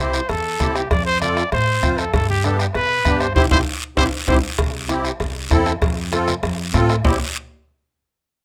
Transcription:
Already playing: upright bass C2
0.00 accordion C4 E4 G4, trumpet C5
0.13 bombo rim, short guiro
0.29 upright bass E2, trumpet A4, bombo rim, cowbell, low conga, long guiro
0.60 upright bass C2, accordion C4 E4 G4, bombo low, bombo rim, high conga, low timbale, short guiro
0.75 trumpet G4, bombo rim, short guiro
0.91 upright bass F2, trumpet D5, bombo low, bombo rim, cowbell, low conga, long guiro
1.06 trumpet C5
1.21 accordion C4 F4 A4, trumpet D5, bombo rim, high conga, short guiro
1.37 bombo rim, short guiro
1.52 upright bass A2, trumpet C5, bombo rim, cowbell, low conga, long guiro
1.82 upright bass F2, accordion C4 F4 C5, bombo low, bombo rim, high conga, short guiro
1.98 trumpet A4, bombo rim, short guiro
2.14 upright bass G2, trumpet A4, bombo low, bombo rim, cowbell, long guiro
2.29 trumpet G4, high conga
2.44 accordion B3 D4 G4, trumpet A4, bombo rim, high conga, short guiro
2.59 trumpet G4, bombo rim, short guiro
2.74 upright bass B2, trumpet B4, bombo rim, cowbell, low conga, long guiro
3.05 upright bass G2, accordion B3 D4 G4, bombo low, bombo rim, high conga, short guiro
3.20 trumpet C5, bombo rim, short guiro
3.35 upright bass C2, accordion C4 E4 G4, trumpet C5, bombo low, low conga, high timbale, long guiro
3.51 upright bass C2, accordion C4 E4 G4, trumpet C5, bombo low, low conga, high timbale, long guiro
3.97 upright bass C2, accordion C4 E4 G4, trumpet C5, bombo low, low conga, high timbale, long guiro
4.28 upright bass C2, accordion C4 E4 G4, trumpet C5, bombo low, low conga, high timbale, long guiro
4.58 upright bass C2, bombo low, bombo rim, cowbell, long guiro
4.89 accordion C4 E4 G4, bombo rim, cowbell, high conga, short guiro
5.04 bombo rim, short guiro
5.20 upright bass C2, bombo rim, cowbell, high conga, low conga, long guiro
5.51 upright bass E2, accordion C4 E4 A4, bombo low, bombo rim, cowbell, high conga, low conga, low timbale, short guiro
5.66 bombo rim, short guiro
5.82 upright bass F2, bombo low, bombo rim, cowbell, long guiro
6.12 accordion C4 F4 A4, bombo rim, cowbell, high conga, short guiro
6.28 bombo rim, high conga, short guiro
6.43 upright bass F2, bombo rim, cowbell, high conga, low conga, long guiro
6.74 upright bass A2, accordion C4 F4 A4, bombo low, bombo rim, cowbell, high conga, low timbale, short guiro
6.89 bombo rim, short guiro
7.04 upright bass C2, accordion C4 E4 G4, bombo low, low conga, low timbale, long guiro

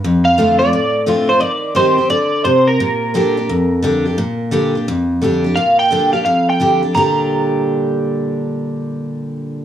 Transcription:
0.04 steel-string acoustic guitar F2
0.25 clean electric guitar F5
0.38 steel-string acoustic guitar D3 A3 C4 F4
0.59 steel-string acoustic guitar C4 F4, clean electric guitar D5
0.73 steel-string acoustic guitar A2
1.06 steel-string acoustic guitar D3 A3 C4 F4
1.29 steel-string acoustic guitar C4 F4, clean electric guitar C5
1.40 steel-string acoustic guitar D#3, clean electric guitar D5
1.75 steel-string acoustic guitar D#3 G3 C4 G4, clean electric guitar C5
1.98 steel-string acoustic guitar C4 G4
2.10 steel-string acoustic guitar D3, clean electric guitar D5
2.44 steel-string acoustic guitar C3, clean electric guitar C5
2.68 clean electric guitar A#4
2.80 steel-string acoustic guitar A#2
3.14 steel-string acoustic guitar D3 G3 D4 G4
3.37 steel-string acoustic guitar D4 G4
3.49 steel-string acoustic guitar F2
3.82 steel-string acoustic guitar D3 G3 D4 G4
4.05 steel-string acoustic guitar D4 G4
4.18 steel-string acoustic guitar A#2
4.51 steel-string acoustic guitar D3 G3 D4 G4
4.75 steel-string acoustic guitar D4 G4
4.88 steel-string acoustic guitar F2
5.22 steel-string acoustic guitar D3 G3 D4 G4
5.44 steel-string acoustic guitar D4 G4
5.56 steel-string acoustic guitar A#2, clean electric guitar F5
5.79 clean electric guitar G5
5.90 steel-string acoustic guitar D3 G3 D4 G4
6.13 steel-string acoustic guitar D4 G4, clean electric guitar F5
6.25 steel-string acoustic guitar F2, clean electric guitar F5
6.49 clean electric guitar G5
6.60 steel-string acoustic guitar D3 G3 D4 G4
6.83 steel-string acoustic guitar D4 G4
6.94 steel-string acoustic guitar A#2 D3 G3 D4 G4, clean electric guitar A#5

